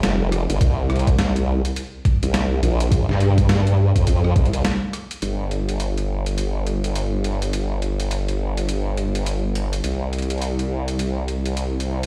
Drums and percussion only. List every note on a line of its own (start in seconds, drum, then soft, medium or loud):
0.03 snare loud
0.03 closed hi-hat medium
0.32 cross-stick soft
0.32 closed hi-hat soft
0.50 closed hi-hat medium
0.61 kick loud
0.61 closed hi-hat medium
0.90 cross-stick medium
0.90 closed hi-hat soft
0.96 closed hi-hat soft
0.99 closed hi-hat soft
1.07 kick loud
1.07 closed hi-hat soft
1.19 snare loud
1.19 closed hi-hat medium
1.36 closed hi-hat soft
1.65 closed hi-hat medium
1.76 closed hi-hat medium
2.05 kick loud
2.05 closed hi-hat soft
2.23 closed hi-hat medium
2.34 snare loud
2.34 closed hi-hat medium
2.63 closed hi-hat medium
2.80 closed hi-hat medium
2.92 kick loud
2.92 closed hi-hat medium
3.09 snare soft
3.20 closed hi-hat soft
3.38 kick loud
3.38 closed hi-hat medium
3.49 snare loud
3.49 closed hi-hat medium
3.67 closed hi-hat soft
3.96 kick medium
3.96 closed hi-hat medium
4.07 kick medium
4.07 closed hi-hat medium
4.24 cross-stick soft
4.36 kick loud
4.36 closed hi-hat soft
4.45 closed hi-hat soft
4.53 closed hi-hat medium
4.55 closed hi-hat soft
4.65 snare loud
4.65 closed hi-hat medium
4.93 cross-stick soft
4.93 closed hi-hat medium
5.11 closed hi-hat medium
5.22 closed hi-hat medium
5.51 closed hi-hat soft
5.69 closed hi-hat soft
5.80 closed hi-hat medium
5.98 closed hi-hat soft
6.26 closed hi-hat soft
6.38 closed hi-hat medium
6.67 closed hi-hat soft
6.84 closed hi-hat soft
6.96 closed hi-hat medium
7.24 closed hi-hat soft
7.42 closed hi-hat medium
7.53 closed hi-hat medium
7.82 closed hi-hat soft
8.00 closed hi-hat soft
8.11 closed hi-hat medium
8.28 closed hi-hat soft
8.57 closed hi-hat soft
8.69 closed hi-hat medium
8.97 closed hi-hat soft
9.15 closed hi-hat soft
9.26 closed hi-hat medium
9.55 closed hi-hat soft
9.73 closed hi-hat medium
9.84 closed hi-hat medium
10.13 closed hi-hat soft
10.19 closed hi-hat soft
10.22 closed hi-hat soft
10.30 closed hi-hat soft
10.32 closed hi-hat soft
10.38 closed hi-hat soft
10.42 closed hi-hat medium
10.59 closed hi-hat soft
10.88 closed hi-hat soft
10.99 closed hi-hat medium
11.28 closed hi-hat soft
11.46 closed hi-hat soft
11.57 closed hi-hat medium
11.80 closed hi-hat soft